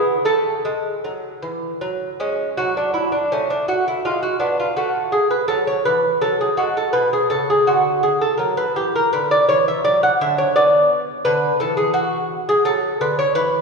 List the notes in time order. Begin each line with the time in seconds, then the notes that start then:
Already playing: B3 G#4
0.25 A3 A4
0.65 G#3
1.04 F#3
1.43 E3
1.81 F#3
2.20 G#3 C#4
2.57 F#3 F#4
2.77 D4
2.94 E4
3.12 D4
3.32 A3 C#4
3.50 D4
3.68 F#4
3.88 E4
4.05 G#3 F4
4.23 F#4
4.40 B3 D4
4.60 F4
4.77 A3 F#4
5.12 G#4
5.31 B4
5.48 F#3 A4
5.67 C#5
5.85 E3 B4
6.21 F#3 A4
6.41 G#4
6.57 G#3 F#4
6.77 A4
6.93 B2 B4
7.13 G#4
7.30 C#3 A4
7.50 G#4
7.67 D3 F#4
8.03 G#4
8.21 A4
8.38 F#3 A#4
8.57 B4
8.76 E3 G4
8.96 A#4
9.13 D3 B4
9.31 D5
9.49 E3 C#5
9.68 E5
9.84 F#3 D5
10.03 F#5
10.21 D3 E5
10.38 C#5
10.56 B3 D5
11.25 D3 B4
11.60 E3 A4
11.77 G#4
11.94 F#4
12.49 G#4
12.65 F#3 A4
13.01 D3 B4
13.19 C#5
13.35 E3 B4